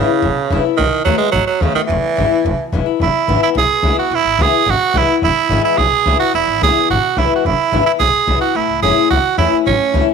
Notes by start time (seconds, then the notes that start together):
Already playing: E2 C#3
0.07 B3 E4
0.22 E1 B2
0.36 muted upright bass stroke
0.50 E1 E3 G#3 B3 E4
0.64 B3 E4, muted upright bass stroke
0.77 B1 B2 D#3
1.04 D#2 D#3 F#3 A3 B3 F#4
1.18 G#3 B3 F#4, muted upright bass stroke
1.32 A1 F#2 F#3
1.47 F#3, muted upright bass stroke
1.61 D#2 C#3 D#3 A3 B3 F#4
1.75 D#3 B3 F#4, muted upright bass stroke
1.87 E1 E2 E3
2.03 muted upright bass stroke
2.17 G#1 E3 G#3 B3 E4
2.31 B3 E4
2.45 E1 B2
2.59 muted upright bass stroke
2.72 E1 E3 G#3 B3 E4
2.86 B3 E4, muted upright bass stroke
3.00 E1 E2 E4
3.27 G#1 E3 G#3 B3 E4
3.43 E4
3.55 B1 B2 G#4
3.82 C#2 E3 G#3 B3 E4
3.97 B3 E4 F#4
4.10 E1 E2
4.15 E4
4.25 G#1
4.39 C#2 E3 G#3 B3 E4 G#4
4.51 B3 E4, muted upright bass stroke
4.66 G#1 B2
4.70 F#4
4.94 B1 E3 G#3 B3 E4
5.07 B3 E4, muted upright bass stroke
5.22 E1 E2 E4
5.49 G#1 E3 G#3 B3 E4
5.64 E4
5.77 B1 B2 G#4
5.92 muted upright bass stroke
6.06 C#2 E3 G#3 B3 E4
6.20 B3 E4 F#4
6.34 E1 E2 E4
6.47 G#1
6.62 C#2 E3 G#3 B3 E4 G#4
6.76 B3 E4, muted upright bass stroke
6.90 G#1 B2 F#4
7.17 B1 E3 G#3 B3 E4
7.30 muted upright bass stroke
7.36 F#4
7.45 E1 E2 E4
7.72 G#1 E3 G#3 B3 E4
7.86 B3 E4, muted upright bass stroke
7.99 B1 B2 G#4
8.14 muted upright bass stroke
8.26 B1 E3 G#3 B3 E4
8.41 B3 E4 F#4
8.55 A1 A2 E4
8.68 C#2
8.82 F#1 E3 A3 C#4 E4 G#4
8.96 C#4 E4
9.10 C#2 E2 F#4
9.37 E2 E3 A3 C#4 E4
9.52 C#4 E4, muted upright bass stroke
9.66 A1 C#4
9.80 muted upright bass stroke
9.93 C#2 E3 A3 C#4 E4
10.07 C#4 E4, muted upright bass stroke